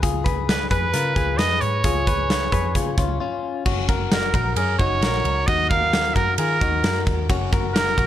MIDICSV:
0, 0, Header, 1, 5, 480
1, 0, Start_track
1, 0, Key_signature, 6, "major"
1, 0, Tempo, 454201
1, 30, Time_signature, 4, 2, 24, 8
1, 8525, End_track
2, 0, Start_track
2, 0, Title_t, "Trumpet"
2, 0, Program_c, 0, 56
2, 510, Note_on_c, 0, 71, 87
2, 734, Note_off_c, 0, 71, 0
2, 742, Note_on_c, 0, 71, 96
2, 1457, Note_on_c, 0, 75, 106
2, 1473, Note_off_c, 0, 71, 0
2, 1702, Note_on_c, 0, 73, 98
2, 1718, Note_off_c, 0, 75, 0
2, 3389, Note_off_c, 0, 73, 0
2, 4353, Note_on_c, 0, 70, 81
2, 4800, Note_off_c, 0, 70, 0
2, 4819, Note_on_c, 0, 70, 81
2, 5049, Note_off_c, 0, 70, 0
2, 5058, Note_on_c, 0, 73, 94
2, 5777, Note_on_c, 0, 75, 101
2, 5793, Note_off_c, 0, 73, 0
2, 6012, Note_off_c, 0, 75, 0
2, 6018, Note_on_c, 0, 77, 106
2, 6499, Note_on_c, 0, 70, 96
2, 6515, Note_off_c, 0, 77, 0
2, 6729, Note_off_c, 0, 70, 0
2, 6735, Note_on_c, 0, 70, 94
2, 7421, Note_off_c, 0, 70, 0
2, 8181, Note_on_c, 0, 70, 92
2, 8525, Note_off_c, 0, 70, 0
2, 8525, End_track
3, 0, Start_track
3, 0, Title_t, "Clean electric guitar"
3, 0, Program_c, 1, 27
3, 29, Note_on_c, 1, 68, 89
3, 36, Note_on_c, 1, 65, 70
3, 256, Note_off_c, 1, 68, 0
3, 258, Note_on_c, 1, 71, 83
3, 269, Note_on_c, 1, 68, 60
3, 273, Note_off_c, 1, 65, 0
3, 715, Note_off_c, 1, 71, 0
3, 721, Note_off_c, 1, 68, 0
3, 749, Note_on_c, 1, 71, 83
3, 755, Note_on_c, 1, 68, 64
3, 984, Note_off_c, 1, 71, 0
3, 988, Note_on_c, 1, 70, 69
3, 991, Note_off_c, 1, 68, 0
3, 996, Note_on_c, 1, 65, 59
3, 1222, Note_off_c, 1, 65, 0
3, 1226, Note_on_c, 1, 68, 77
3, 1230, Note_off_c, 1, 70, 0
3, 1236, Note_on_c, 1, 65, 53
3, 1466, Note_off_c, 1, 68, 0
3, 1467, Note_on_c, 1, 71, 86
3, 1474, Note_off_c, 1, 65, 0
3, 1479, Note_on_c, 1, 68, 64
3, 1921, Note_off_c, 1, 71, 0
3, 1927, Note_off_c, 1, 68, 0
3, 1949, Note_on_c, 1, 68, 98
3, 1958, Note_on_c, 1, 65, 83
3, 2187, Note_off_c, 1, 68, 0
3, 2191, Note_on_c, 1, 71, 81
3, 2195, Note_off_c, 1, 65, 0
3, 2199, Note_on_c, 1, 68, 60
3, 2643, Note_off_c, 1, 71, 0
3, 2648, Note_off_c, 1, 68, 0
3, 2668, Note_on_c, 1, 71, 85
3, 2677, Note_on_c, 1, 68, 64
3, 2892, Note_off_c, 1, 68, 0
3, 2905, Note_on_c, 1, 68, 77
3, 2911, Note_off_c, 1, 71, 0
3, 2915, Note_on_c, 1, 65, 58
3, 3136, Note_off_c, 1, 65, 0
3, 3144, Note_off_c, 1, 68, 0
3, 3148, Note_on_c, 1, 65, 79
3, 3156, Note_on_c, 1, 61, 56
3, 3373, Note_off_c, 1, 65, 0
3, 3382, Note_off_c, 1, 61, 0
3, 3386, Note_on_c, 1, 65, 81
3, 3395, Note_on_c, 1, 61, 68
3, 3841, Note_off_c, 1, 65, 0
3, 3846, Note_off_c, 1, 61, 0
3, 3865, Note_on_c, 1, 66, 100
3, 3878, Note_on_c, 1, 61, 81
3, 4101, Note_off_c, 1, 66, 0
3, 4108, Note_on_c, 1, 70, 77
3, 4114, Note_on_c, 1, 66, 65
3, 4116, Note_off_c, 1, 61, 0
3, 4562, Note_off_c, 1, 70, 0
3, 4565, Note_off_c, 1, 66, 0
3, 4593, Note_on_c, 1, 70, 88
3, 4599, Note_on_c, 1, 66, 66
3, 4824, Note_off_c, 1, 66, 0
3, 4828, Note_on_c, 1, 68, 72
3, 4834, Note_off_c, 1, 70, 0
3, 4839, Note_on_c, 1, 61, 58
3, 5070, Note_off_c, 1, 68, 0
3, 5074, Note_on_c, 1, 66, 74
3, 5077, Note_off_c, 1, 61, 0
3, 5082, Note_on_c, 1, 63, 61
3, 5310, Note_off_c, 1, 66, 0
3, 5316, Note_on_c, 1, 70, 85
3, 5318, Note_off_c, 1, 63, 0
3, 5322, Note_on_c, 1, 66, 66
3, 5766, Note_off_c, 1, 70, 0
3, 5769, Note_off_c, 1, 66, 0
3, 5793, Note_on_c, 1, 66, 100
3, 5802, Note_on_c, 1, 63, 84
3, 6033, Note_off_c, 1, 66, 0
3, 6038, Note_off_c, 1, 63, 0
3, 6039, Note_on_c, 1, 70, 81
3, 6045, Note_on_c, 1, 66, 67
3, 6487, Note_off_c, 1, 70, 0
3, 6491, Note_off_c, 1, 66, 0
3, 6507, Note_on_c, 1, 70, 84
3, 6517, Note_on_c, 1, 66, 69
3, 6749, Note_off_c, 1, 66, 0
3, 6750, Note_off_c, 1, 70, 0
3, 6753, Note_on_c, 1, 68, 74
3, 6759, Note_on_c, 1, 65, 57
3, 6987, Note_off_c, 1, 68, 0
3, 6991, Note_on_c, 1, 66, 74
3, 6995, Note_off_c, 1, 65, 0
3, 6999, Note_on_c, 1, 63, 66
3, 7228, Note_off_c, 1, 66, 0
3, 7231, Note_on_c, 1, 70, 77
3, 7236, Note_off_c, 1, 63, 0
3, 7241, Note_on_c, 1, 66, 64
3, 7683, Note_off_c, 1, 70, 0
3, 7688, Note_off_c, 1, 66, 0
3, 7711, Note_on_c, 1, 66, 98
3, 7721, Note_on_c, 1, 61, 77
3, 7949, Note_off_c, 1, 66, 0
3, 7953, Note_on_c, 1, 70, 79
3, 7956, Note_off_c, 1, 61, 0
3, 7961, Note_on_c, 1, 66, 65
3, 8403, Note_off_c, 1, 70, 0
3, 8408, Note_off_c, 1, 66, 0
3, 8430, Note_on_c, 1, 70, 80
3, 8436, Note_on_c, 1, 66, 75
3, 8525, Note_off_c, 1, 66, 0
3, 8525, Note_off_c, 1, 70, 0
3, 8525, End_track
4, 0, Start_track
4, 0, Title_t, "Picked electric bass"
4, 0, Program_c, 2, 34
4, 30, Note_on_c, 2, 37, 87
4, 715, Note_off_c, 2, 37, 0
4, 748, Note_on_c, 2, 41, 88
4, 954, Note_off_c, 2, 41, 0
4, 992, Note_on_c, 2, 49, 98
4, 1196, Note_off_c, 2, 49, 0
4, 1227, Note_on_c, 2, 37, 106
4, 1471, Note_off_c, 2, 37, 0
4, 1471, Note_on_c, 2, 41, 92
4, 1675, Note_off_c, 2, 41, 0
4, 1715, Note_on_c, 2, 44, 87
4, 1918, Note_off_c, 2, 44, 0
4, 1944, Note_on_c, 2, 37, 101
4, 2633, Note_off_c, 2, 37, 0
4, 2664, Note_on_c, 2, 41, 86
4, 2907, Note_on_c, 2, 49, 97
4, 2923, Note_off_c, 2, 41, 0
4, 3114, Note_off_c, 2, 49, 0
4, 3147, Note_on_c, 2, 37, 99
4, 3354, Note_off_c, 2, 37, 0
4, 3863, Note_on_c, 2, 30, 92
4, 4552, Note_off_c, 2, 30, 0
4, 4583, Note_on_c, 2, 34, 92
4, 4792, Note_off_c, 2, 34, 0
4, 4818, Note_on_c, 2, 42, 100
4, 5029, Note_off_c, 2, 42, 0
4, 5069, Note_on_c, 2, 30, 98
4, 5275, Note_off_c, 2, 30, 0
4, 5298, Note_on_c, 2, 34, 92
4, 5509, Note_off_c, 2, 34, 0
4, 5541, Note_on_c, 2, 37, 100
4, 5750, Note_off_c, 2, 37, 0
4, 5790, Note_on_c, 2, 39, 113
4, 6476, Note_off_c, 2, 39, 0
4, 6505, Note_on_c, 2, 42, 80
4, 6713, Note_off_c, 2, 42, 0
4, 6745, Note_on_c, 2, 51, 101
4, 6952, Note_off_c, 2, 51, 0
4, 6989, Note_on_c, 2, 39, 99
4, 7195, Note_off_c, 2, 39, 0
4, 7227, Note_on_c, 2, 42, 95
4, 7433, Note_off_c, 2, 42, 0
4, 7471, Note_on_c, 2, 39, 89
4, 7709, Note_on_c, 2, 30, 99
4, 7724, Note_off_c, 2, 39, 0
4, 8394, Note_off_c, 2, 30, 0
4, 8430, Note_on_c, 2, 34, 85
4, 8525, Note_off_c, 2, 34, 0
4, 8525, End_track
5, 0, Start_track
5, 0, Title_t, "Drums"
5, 32, Note_on_c, 9, 36, 98
5, 37, Note_on_c, 9, 42, 104
5, 138, Note_off_c, 9, 36, 0
5, 142, Note_off_c, 9, 42, 0
5, 273, Note_on_c, 9, 36, 96
5, 278, Note_on_c, 9, 42, 62
5, 379, Note_off_c, 9, 36, 0
5, 384, Note_off_c, 9, 42, 0
5, 519, Note_on_c, 9, 38, 115
5, 520, Note_on_c, 9, 42, 87
5, 624, Note_off_c, 9, 38, 0
5, 625, Note_off_c, 9, 42, 0
5, 749, Note_on_c, 9, 36, 88
5, 757, Note_on_c, 9, 42, 74
5, 855, Note_off_c, 9, 36, 0
5, 862, Note_off_c, 9, 42, 0
5, 989, Note_on_c, 9, 42, 106
5, 990, Note_on_c, 9, 38, 38
5, 1094, Note_off_c, 9, 42, 0
5, 1096, Note_off_c, 9, 38, 0
5, 1228, Note_on_c, 9, 36, 88
5, 1229, Note_on_c, 9, 42, 66
5, 1333, Note_off_c, 9, 36, 0
5, 1334, Note_off_c, 9, 42, 0
5, 1466, Note_on_c, 9, 42, 91
5, 1471, Note_on_c, 9, 38, 100
5, 1572, Note_off_c, 9, 42, 0
5, 1577, Note_off_c, 9, 38, 0
5, 1704, Note_on_c, 9, 42, 60
5, 1809, Note_off_c, 9, 42, 0
5, 1944, Note_on_c, 9, 42, 108
5, 1947, Note_on_c, 9, 36, 97
5, 2050, Note_off_c, 9, 42, 0
5, 2053, Note_off_c, 9, 36, 0
5, 2190, Note_on_c, 9, 36, 96
5, 2192, Note_on_c, 9, 42, 64
5, 2296, Note_off_c, 9, 36, 0
5, 2297, Note_off_c, 9, 42, 0
5, 2432, Note_on_c, 9, 38, 104
5, 2433, Note_on_c, 9, 42, 83
5, 2538, Note_off_c, 9, 38, 0
5, 2539, Note_off_c, 9, 42, 0
5, 2667, Note_on_c, 9, 36, 83
5, 2679, Note_on_c, 9, 42, 65
5, 2773, Note_off_c, 9, 36, 0
5, 2784, Note_off_c, 9, 42, 0
5, 2907, Note_on_c, 9, 42, 103
5, 2908, Note_on_c, 9, 36, 84
5, 3013, Note_off_c, 9, 36, 0
5, 3013, Note_off_c, 9, 42, 0
5, 3146, Note_on_c, 9, 36, 99
5, 3149, Note_on_c, 9, 42, 76
5, 3252, Note_off_c, 9, 36, 0
5, 3255, Note_off_c, 9, 42, 0
5, 3867, Note_on_c, 9, 36, 101
5, 3867, Note_on_c, 9, 49, 91
5, 3973, Note_off_c, 9, 36, 0
5, 3973, Note_off_c, 9, 49, 0
5, 4109, Note_on_c, 9, 36, 92
5, 4114, Note_on_c, 9, 51, 55
5, 4214, Note_off_c, 9, 36, 0
5, 4219, Note_off_c, 9, 51, 0
5, 4350, Note_on_c, 9, 38, 120
5, 4351, Note_on_c, 9, 51, 69
5, 4456, Note_off_c, 9, 38, 0
5, 4457, Note_off_c, 9, 51, 0
5, 4585, Note_on_c, 9, 36, 91
5, 4592, Note_on_c, 9, 51, 62
5, 4691, Note_off_c, 9, 36, 0
5, 4698, Note_off_c, 9, 51, 0
5, 4823, Note_on_c, 9, 51, 88
5, 4929, Note_off_c, 9, 51, 0
5, 5067, Note_on_c, 9, 36, 84
5, 5070, Note_on_c, 9, 51, 55
5, 5173, Note_off_c, 9, 36, 0
5, 5175, Note_off_c, 9, 51, 0
5, 5309, Note_on_c, 9, 51, 75
5, 5314, Note_on_c, 9, 38, 107
5, 5415, Note_off_c, 9, 51, 0
5, 5420, Note_off_c, 9, 38, 0
5, 5549, Note_on_c, 9, 51, 57
5, 5655, Note_off_c, 9, 51, 0
5, 5789, Note_on_c, 9, 36, 115
5, 5790, Note_on_c, 9, 51, 85
5, 5895, Note_off_c, 9, 36, 0
5, 5896, Note_off_c, 9, 51, 0
5, 6031, Note_on_c, 9, 36, 97
5, 6034, Note_on_c, 9, 51, 55
5, 6137, Note_off_c, 9, 36, 0
5, 6140, Note_off_c, 9, 51, 0
5, 6271, Note_on_c, 9, 38, 120
5, 6272, Note_on_c, 9, 51, 71
5, 6377, Note_off_c, 9, 38, 0
5, 6378, Note_off_c, 9, 51, 0
5, 6508, Note_on_c, 9, 36, 82
5, 6515, Note_on_c, 9, 51, 57
5, 6613, Note_off_c, 9, 36, 0
5, 6620, Note_off_c, 9, 51, 0
5, 6741, Note_on_c, 9, 51, 96
5, 6847, Note_off_c, 9, 51, 0
5, 6990, Note_on_c, 9, 36, 89
5, 6992, Note_on_c, 9, 51, 61
5, 7095, Note_off_c, 9, 36, 0
5, 7097, Note_off_c, 9, 51, 0
5, 7226, Note_on_c, 9, 51, 73
5, 7231, Note_on_c, 9, 38, 102
5, 7332, Note_off_c, 9, 51, 0
5, 7337, Note_off_c, 9, 38, 0
5, 7468, Note_on_c, 9, 51, 56
5, 7470, Note_on_c, 9, 36, 80
5, 7573, Note_off_c, 9, 51, 0
5, 7576, Note_off_c, 9, 36, 0
5, 7710, Note_on_c, 9, 36, 105
5, 7713, Note_on_c, 9, 51, 86
5, 7816, Note_off_c, 9, 36, 0
5, 7818, Note_off_c, 9, 51, 0
5, 7954, Note_on_c, 9, 36, 94
5, 7962, Note_on_c, 9, 51, 56
5, 8060, Note_off_c, 9, 36, 0
5, 8067, Note_off_c, 9, 51, 0
5, 8199, Note_on_c, 9, 38, 117
5, 8200, Note_on_c, 9, 51, 73
5, 8305, Note_off_c, 9, 38, 0
5, 8306, Note_off_c, 9, 51, 0
5, 8431, Note_on_c, 9, 36, 90
5, 8440, Note_on_c, 9, 51, 64
5, 8525, Note_off_c, 9, 36, 0
5, 8525, Note_off_c, 9, 51, 0
5, 8525, End_track
0, 0, End_of_file